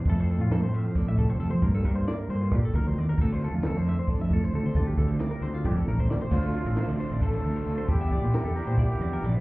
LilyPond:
<<
  \new Staff \with { instrumentName = "Clean electric guitar" } { \time 7/8 \key d \minor \tempo 4 = 134 a'16 c''16 a'16 f'16 a'16 c''16 e''16 c''16 a'16 e''16 a'16 c''16 a'16 c''16 | bes'16 a'16 bes'16 c''16 d''16 bes'16 c''16 f'16 g'16 a'16 bes'16 c''16 d''16 bes'16 | a'16 c''16 a'16 f'16 a'16 c''16 e''16 c''16 a'16 e''16 a'16 c''16 a'16 c''16 | a'16 g'16 a'16 c''16 d''16 bes'16 c''16 f'16 g'16 a'16 bes'16 c''16 d''16 c''16 |
c''16 a'16 f'16 a'16 c''16 d''16 c''16 d''16 a'16 c''16 bes'16 c''16 a'16 c''16 | g'16 e''16 d''16 c''16 bes'16 a'16 bes'16 c''16 d''16 bes'16 d''16 bes'16 d''16 c''16 | }
  \new Staff \with { instrumentName = "Trumpet" } { \time 7/8 \key d \minor r2. r8 | r2. r8 | r2. r8 | r2. r8 |
f'4. r8 a'4. | g'2 g'4 r8 | }
  \new Staff \with { instrumentName = "Overdriven electric guitar" } { \time 7/8 \key d \minor r2. r8 | r2. r8 | r2. r8 | r2. r8 |
<d a d' f'>8 <a d' f'>8 <d a d' f'>8 <a d' f'>8 <d a d' f'>8 <a d' f'>8 <d a d' f'>8 | <e g b e'>8 <g b e'>8 <e g b e'>8 <g b e'>8 <e g b e'>8 <g b e'>8 <e g b e'>8 | }
  \new Staff \with { instrumentName = "Clean electric guitar" } { \time 7/8 \key d \minor << { <a c' e'>8 c'8 a4 d'4 a8 | <bes d' f'>8 d'8 bes2~ bes8 | <c' d' f'>8 d'8 c'4 d'16 f'8. c'8 | <g c' f'>8 c'8 g4 d'4 g8 |
d'8 c'4 d'2 | d'8 g4 d'2 | } \\ { f,4. f4 c4 | g,4. d8 g,8 f,8 e,8 | d,4. d4 a,4 | d,4. d4 a,4 |
d,4. d4. d,8 | e,4. e8 e,8 f,8 g,8 | } >> }
  \new Staff \with { instrumentName = "Fingered electric bass" } { \clef bass \time 7/8 \key d \minor f,8. a,16 f,16 a,8 r8 a,8 r16 f,16 f16 | g,8 g,8 r8 g,8 bes,16 r16 d,16 d,16 ees,16 r16 | d,8. f,16 d,16 f,8 r8 f,8 r16 d,16 d16 | d,8 d,8 r8 d,8 f,16 r16 a,,16 a,,16 d,16 r16 |
d,8 r16 a,,16 r16 d,16 r16 a,,8 r16 d,16 r16 d,16 r16 | e,8 r16 bes,16 r16 e,16 r16 bes,8 r16 e,16 r16 bes,,16 r16 | }
  \new DrumStaff \with { instrumentName = "Drums" } \drummode { \time 7/8 <hh bd>8 hh8 <hh sn>8 hh8 <hh bd sn>8 <hh bd>8 hh8 | <hh bd>8 <hh bd>8 <hh sn>8 hh8 <hh bd sn>8 <hh bd>8 hh8 | <hh bd>8 <hh sn>8 <hh sn>8 <hh sn>8 <hh bd>8 <hh bd sn>8 hh8 | <hh bd>8 <hh bd sn>8 <hh sn>8 <hh sn>8 <bd tommh>16 bd16 toml16 bd16 sn16 tomfh16 |
<cymc bd>8 hh8 <hh sn>8 hh8 <hh bd>8 hh8 hh8 | <hh bd>8 <hh bd sn>8 <hh sn>8 hh8 <hh bd>8 hh8 <hh sn>8 | }
>>